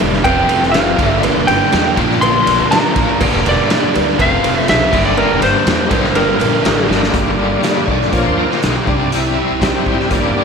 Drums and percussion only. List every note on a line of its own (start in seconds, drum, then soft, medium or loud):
0.00 ride medium
0.00 cowbell medium
0.13 snare soft
0.24 kick loud
0.24 ride loud
0.24 cowbell loud
0.49 ride medium
0.49 cowbell medium
0.62 snare soft
0.74 snare loud
0.74 ride loud
0.74 cowbell medium
0.99 kick loud
0.99 snare soft
0.99 ride medium
1.23 ride loud
1.23 cowbell loud
1.48 ride medium
1.48 cowbell medium
1.72 snare loud
1.72 ride loud
1.97 kick loud
1.97 ride medium
2.11 snare soft
2.22 ride loud
2.22 cowbell loud
2.47 ride medium
2.47 cowbell medium
2.72 snare loud
2.72 ride loud
2.72 cowbell medium
2.96 kick medium
2.96 snare soft
2.96 ride medium
3.21 kick loud
3.21 cowbell loud
3.21 crash loud
3.46 ride medium
3.46 cowbell medium
3.70 snare loud
3.70 ride loud
3.95 ride medium
3.95 cowbell medium
4.19 kick loud
4.19 ride medium
4.19 cowbell loud
4.44 ride medium
4.44 cowbell medium
4.68 snare loud
4.68 ride loud
4.68 cowbell medium
4.93 kick loud
4.93 snare soft
4.93 crash loud
5.18 cowbell medium
5.42 ride medium
5.42 cowbell medium
5.67 snare loud
5.67 ride loud
5.91 kick loud
5.91 ride medium
5.91 cowbell medium
6.05 snare soft
6.15 ride medium
6.15 cowbell loud
6.40 ride medium
6.40 cowbell medium
6.65 snare loud
6.65 ride loud
6.65 cowbell medium
6.91 snare medium
7.03 snare medium
7.14 kick loud
7.14 closed hi-hat medium
7.63 snare loud
7.63 closed hi-hat medium
7.88 kick medium
8.02 snare soft
8.13 kick loud
8.13 closed hi-hat medium
8.51 snare soft
8.63 snare loud
8.63 closed hi-hat medium
8.87 kick loud
9.12 closed hi-hat medium
9.62 kick medium
9.62 snare loud
9.62 closed hi-hat medium
9.86 kick medium
10.00 snare soft
10.11 kick loud
10.11 closed hi-hat medium